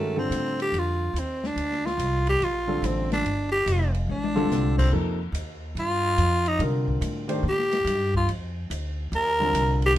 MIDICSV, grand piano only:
0, 0, Header, 1, 2, 480
1, 0, Start_track
1, 0, Key_signature, -2, "minor"
1, 0, Tempo, 419580
1, 1797, Time_signature, 4, 2, 24, 8
1, 11422, End_track
2, 0, Start_track
2, 0, Title_t, "Grand piano"
2, 0, Program_c, 0, 0
2, 0, Note_on_c, 0, 51, 56
2, 0, Note_on_c, 0, 56, 53
2, 0, Note_on_c, 0, 61, 52
2, 0, Note_on_c, 0, 66, 53
2, 0, Note_on_c, 0, 70, 65
2, 151, Note_off_c, 0, 51, 0
2, 153, Note_off_c, 0, 56, 0
2, 155, Note_off_c, 0, 61, 0
2, 158, Note_off_c, 0, 66, 0
2, 162, Note_off_c, 0, 70, 0
2, 177, Note_on_c, 0, 50, 67
2, 185, Note_on_c, 0, 55, 56
2, 185, Note_on_c, 0, 60, 60
2, 186, Note_on_c, 0, 65, 55
2, 189, Note_on_c, 0, 69, 68
2, 1210, Note_off_c, 0, 50, 0
2, 1214, Note_off_c, 0, 55, 0
2, 1214, Note_off_c, 0, 60, 0
2, 1215, Note_off_c, 0, 65, 0
2, 1216, Note_off_c, 0, 69, 0
2, 3054, Note_on_c, 0, 50, 67
2, 3063, Note_on_c, 0, 55, 63
2, 3065, Note_on_c, 0, 60, 61
2, 3067, Note_on_c, 0, 69, 75
2, 3069, Note_on_c, 0, 65, 64
2, 3675, Note_off_c, 0, 50, 0
2, 3679, Note_off_c, 0, 55, 0
2, 3680, Note_off_c, 0, 60, 0
2, 3681, Note_off_c, 0, 69, 0
2, 3683, Note_off_c, 0, 65, 0
2, 4974, Note_on_c, 0, 50, 73
2, 4976, Note_on_c, 0, 55, 74
2, 4982, Note_on_c, 0, 65, 74
2, 4983, Note_on_c, 0, 60, 72
2, 4986, Note_on_c, 0, 69, 94
2, 5595, Note_off_c, 0, 50, 0
2, 5596, Note_off_c, 0, 55, 0
2, 5599, Note_off_c, 0, 65, 0
2, 5600, Note_off_c, 0, 60, 0
2, 5601, Note_off_c, 0, 69, 0
2, 5623, Note_on_c, 0, 48, 65
2, 5629, Note_on_c, 0, 53, 55
2, 5630, Note_on_c, 0, 58, 54
2, 5636, Note_on_c, 0, 69, 72
2, 5637, Note_on_c, 0, 63, 59
2, 5912, Note_off_c, 0, 48, 0
2, 5915, Note_off_c, 0, 53, 0
2, 5915, Note_off_c, 0, 58, 0
2, 5918, Note_off_c, 0, 69, 0
2, 5919, Note_off_c, 0, 63, 0
2, 7545, Note_on_c, 0, 50, 61
2, 7547, Note_on_c, 0, 55, 60
2, 7554, Note_on_c, 0, 60, 53
2, 7557, Note_on_c, 0, 65, 57
2, 7564, Note_on_c, 0, 70, 68
2, 8281, Note_off_c, 0, 50, 0
2, 8282, Note_off_c, 0, 55, 0
2, 8286, Note_off_c, 0, 60, 0
2, 8287, Note_off_c, 0, 65, 0
2, 8290, Note_off_c, 0, 70, 0
2, 8327, Note_on_c, 0, 51, 66
2, 8333, Note_on_c, 0, 62, 65
2, 8336, Note_on_c, 0, 57, 61
2, 8338, Note_on_c, 0, 67, 64
2, 8342, Note_on_c, 0, 72, 78
2, 8488, Note_off_c, 0, 51, 0
2, 8491, Note_off_c, 0, 62, 0
2, 8492, Note_off_c, 0, 57, 0
2, 8493, Note_off_c, 0, 67, 0
2, 8495, Note_off_c, 0, 72, 0
2, 10752, Note_on_c, 0, 50, 66
2, 10753, Note_on_c, 0, 55, 61
2, 10758, Note_on_c, 0, 60, 66
2, 10761, Note_on_c, 0, 65, 63
2, 10763, Note_on_c, 0, 70, 78
2, 11362, Note_off_c, 0, 50, 0
2, 11363, Note_off_c, 0, 55, 0
2, 11365, Note_off_c, 0, 60, 0
2, 11366, Note_off_c, 0, 65, 0
2, 11368, Note_off_c, 0, 70, 0
2, 11422, End_track
0, 0, End_of_file